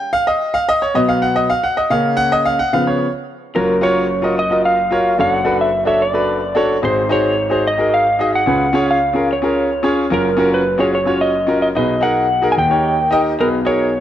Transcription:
Already playing: grand piano G5
0.13 grand piano F5
0.27 grand piano D#5
0.54 grand piano F5
0.69 grand piano D#5
0.82 grand piano C#5
0.94 grand piano B2 F#3 B3 D#5
1.09 grand piano F5
1.22 grand piano F#5
1.36 grand piano D#5
1.50 grand piano F5
1.64 grand piano F#5
1.77 grand piano D#5
1.90 grand piano C#3 A#3 C#4 F5
2.17 grand piano F#5
2.32 grand piano D#5
2.45 grand piano F5
2.59 grand piano F#5
2.73 grand piano C#3 F3 B3 F5
2.87 grand piano C#5
3.55 grand piano F#1 F#2 F4 F#4 A#4 C#5, electric slide guitar A#4
3.81 grand piano F4 F#4 A#4 C#5, electric slide guitar C#5
4.22 grand piano F4 F#4 A#4 D#5
4.39 electric slide guitar D#5
4.50 grand piano F4 F#4 A#4 D#5
4.65 electric slide guitar F5
4.91 grand piano F4 F#4 A#4 C#5
5.18 grand piano F#1 F#2 D4 F#4 A4 C#5, electric slide guitar F5
5.32 electric slide guitar F#5
5.44 grand piano D4 F#4 A4 B4
5.61 electric slide guitar E5
5.85 grand piano D4 F#4 A4 C#5, electric slide guitar E5
6.02 electric slide guitar D5
6.13 grand piano D4 F#4 A4 B4
6.55 grand piano D4 F#4 A4 C#5
6.82 grand piano G#1 G#2 D#4 F#4 G#4 C5, electric slide guitar C5
7.09 grand piano D#4 F#4 G#4 C5, electric slide guitar C#5
7.50 grand piano D#4 F#4 G#4 C5
7.67 electric slide guitar D#5
7.78 grand piano D#4 F#4 G#4 A#4
7.94 electric slide guitar F5
8.19 grand piano D#4 F#4 G#4 D#5
8.35 electric slide guitar F#5
8.46 grand piano C#2 C#3 C#4 F4 G#4 B4
8.73 grand piano C#4 F4 G#4 C#5
8.91 electric slide guitar F5
9.13 grand piano C#4 F4 G#4 A#4
9.33 electric slide guitar C#5
9.42 grand piano C#4 F4 G#4 A#4
9.83 grand piano C#4 F4 G#4 C#5
10.10 grand piano F#1 F#2 C#4 F4 F#4 A#4, electric slide guitar A#4
10.37 grand piano C#4 F4 F#4 A#4
10.54 electric slide guitar B4
10.78 grand piano C#4 F4 F#4 G#4, electric slide guitar C#5
10.95 electric slide guitar C#5
11.05 grand piano C#4 F4 F#4 C#5
11.21 electric slide guitar D#5
11.47 grand piano C#4 F4 F#4 A#4
11.62 electric slide guitar D#5
11.75 grand piano B1 B2 D#4 F#4 G#4 B4, electric slide guitar D#5
12.00 grand piano D#4 F#4 G#4 A#4, electric slide guitar F#5
12.42 grand piano D#4 F#4 G#4 A#4
12.52 electric slide guitar G#5
12.57 grand piano D#2 D#3, electric slide guitar G5
12.69 grand piano D#4 G4 A#4 C#5
13.10 grand piano D#4 G4 A#4 D#5
13.39 grand piano B1 B2 D#4 F#4 G#4 B4, electric slide guitar A#4
13.65 grand piano D#4 F#4 G#4 A#4, electric slide guitar C#5

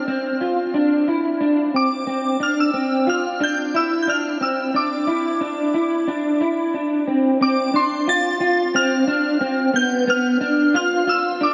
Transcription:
Already playing: synth bell F6
0.08 clean electric guitar C4
0.41 clean electric guitar F4
0.74 clean electric guitar D4
1.08 clean electric guitar E4
1.41 clean electric guitar D4
1.74 clean electric guitar C4, synth bell D6
2.07 clean electric guitar C4
2.40 clean electric guitar D4, synth bell F6
2.60 synth bell E6
2.74 clean electric guitar C4
3.07 clean electric guitar F4, synth bell F6
3.40 clean electric guitar D4, synth bell G6
3.74 clean electric guitar E4, synth bell E6
4.03 synth bell G6
4.07 clean electric guitar D4, synth bell F6
4.41 clean electric guitar C4, synth bell E6
4.74 clean electric guitar D4, synth bell D6
5.07 clean electric guitar E4
5.41 clean electric guitar D4
5.74 clean electric guitar E4
6.08 clean electric guitar D4
6.41 clean electric guitar E4
6.74 clean electric guitar D4
7.07 clean electric guitar C4
7.41 clean electric guitar C4, synth bell D6
7.74 clean electric guitar D4, synth bell C6
8.08 clean electric guitar F4, synth bell A6
8.41 clean electric guitar F4
8.75 clean electric guitar C4, synth bell F6
9.08 clean electric guitar D4
9.41 clean electric guitar C4
9.74 clean electric guitar B3, synth bell G6
10.07 clean electric guitar B3, synth bell F6
10.41 clean electric guitar D4
10.74 clean electric guitar F4, synth bell F6
11.07 clean electric guitar F4, synth bell E6
11.41 clean electric guitar D4, synth bell D6

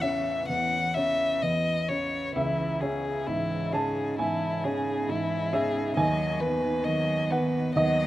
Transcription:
Already playing: upright piano A1 E2 C#4 C#5
0.01 cello C#3, upright piano C#4, violin E5
0.48 upright piano E2, cello E3, violin F#5
0.94 cello C#3, upright piano C#4, violin E5
1.42 upright piano E2, cello E3, violin D#5
1.89 cello C#3, upright piano C#4, violin C#5
2.35 upright piano C#2 E5, cello E3, violin E4
2.81 cello C#3, upright piano C#4, violin G#4
3.27 upright piano G#2, cello E3, violin E4
3.73 cello C#3, upright piano C#4 A5, violin G#4
4.19 upright piano G#2 G#5, cello E3, violin E4
4.65 cello C#3, upright piano C#4, violin G#4
5.09 upright piano G#2, cello E3, violin E4
5.53 cello C#3, upright piano C#4 E5, violin G#4
5.97 upright piano D#2 G#5, cello F#3, violin D#5
6.40 cello D#3, upright piano B3, violin B4
6.84 upright piano D#3, cello F#3, violin D#5
7.31 cello D#3, upright piano B3 F#5, violin B4
7.75 upright piano D#2 D#5, cello F#3, violin D#5

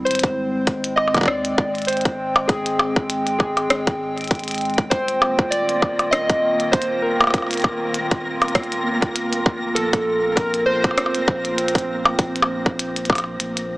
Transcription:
Already playing: ambient pad C4
0.05 sub bass G#1, ambient pad G#3 G5, synth keys C5, closed hi-hat
0.11 closed hi-hat
0.15 closed hi-hat
0.19 closed hi-hat
0.23 kick, closed hi-hat
0.67 kick, closed hi-hat
0.84 closed hi-hat
0.96 synth keys D#5, percussion blips
1.08 percussion blips
1.14 kick, closed hi-hat, percussion blips
1.17 kick, percussion blips
1.21 kick
1.23 kick
1.26 sub bass D#2, synth keys D5, kick, cross-stick
1.45 closed hi-hat
1.58 sub bass G#1, kick
1.75 closed hi-hat
1.78 closed hi-hat
1.82 closed hi-hat
1.85 synth keys C5, closed hi-hat
1.88 closed hi-hat
1.93 closed hi-hat
1.97 closed hi-hat
2.01 closed hi-hat
2.05 kick, closed hi-hat
2.36 percussion blips
2.47 sub bass G#1, synth keys G#4, kick, closed hi-hat
2.66 closed hi-hat
2.79 percussion blips
2.96 kick
3.10 closed hi-hat
3.27 closed hi-hat
3.38 synth keys G#4, kick, percussion blips
3.57 closed hi-hat, percussion blips
3.70 sub bass G#1, cross-stick, closed hi-hat
3.87 kick, closed hi-hat
4.18 closed hi-hat
4.21 closed hi-hat
4.24 closed hi-hat
4.28 kick, closed hi-hat
4.31 closed hi-hat
4.35 closed hi-hat
4.39 closed hi-hat
4.44 closed hi-hat
4.48 closed hi-hat
4.51 closed hi-hat
4.55 closed hi-hat
4.58 closed hi-hat
4.61 closed hi-hat
4.65 closed hi-hat
4.70 closed hi-hat
4.74 closed hi-hat
4.78 kick, closed hi-hat
4.90 sub bass D#1, ambient pad D#3 A#3 F4, synth texture A#3 A#6, synth keys C5, kick, closed hi-hat
5.08 closed hi-hat
5.22 percussion blips
5.39 kick
5.51 synth keys D5, closed hi-hat
5.69 closed hi-hat
5.82 kick, percussion blips
5.99 closed hi-hat, percussion blips
6.11 synth keys D#5, cross-stick, closed hi-hat
6.30 kick, closed hi-hat
6.60 closed hi-hat
6.72 synth keys C5, kick, closed hi-hat
6.82 closed hi-hat
7.02 synth keys A#4
7.21 percussion blips
7.24 percussion blips
7.27 percussion blips
7.30 sub bass D#1, closed hi-hat, percussion blips
7.34 kick, percussion blips
7.38 percussion blips
7.42 percussion blips
7.47 percussion blips
7.51 closed hi-hat
7.53 closed hi-hat
7.57 closed hi-hat
7.60 closed hi-hat
7.62 kick, closed hi-hat, percussion blips
7.94 closed hi-hat
8.11 kick, closed hi-hat
8.42 closed hi-hat, percussion blips
8.48 closed hi-hat
8.55 kick, cross-stick, closed hi-hat
8.64 closed hi-hat
8.72 closed hi-hat
9.02 kick, closed hi-hat
9.16 closed hi-hat
9.33 closed hi-hat
9.46 sub bass F1, kick
9.75 sub bass A#1, ambient pad C4, synth keys A4, closed hi-hat
9.93 kick, closed hi-hat
10.35 synth keys A#4, kick, closed hi-hat
10.54 closed hi-hat
10.66 synth keys C5
10.84 kick, closed hi-hat, percussion blips
10.91 percussion blips
10.97 sub bass F1, cross-stick, closed hi-hat, percussion blips
11.06 percussion blips
11.15 closed hi-hat
11.28 sub bass A#1, kick
11.45 closed hi-hat
11.58 closed hi-hat
11.68 closed hi-hat
11.75 kick, closed hi-hat
11.78 closed hi-hat
12.05 percussion blips
12.19 sub bass A#1, kick, closed hi-hat
12.36 closed hi-hat
12.42 percussion blips
12.66 kick
12.79 closed hi-hat
12.96 closed hi-hat
13.05 closed hi-hat
13.10 kick, percussion blips
13.13 closed hi-hat, percussion blips
13.15 closed hi-hat, percussion blips
13.18 percussion blips
13.20 percussion blips
13.24 percussion blips
13.40 sub bass A#1, closed hi-hat
13.57 closed hi-hat

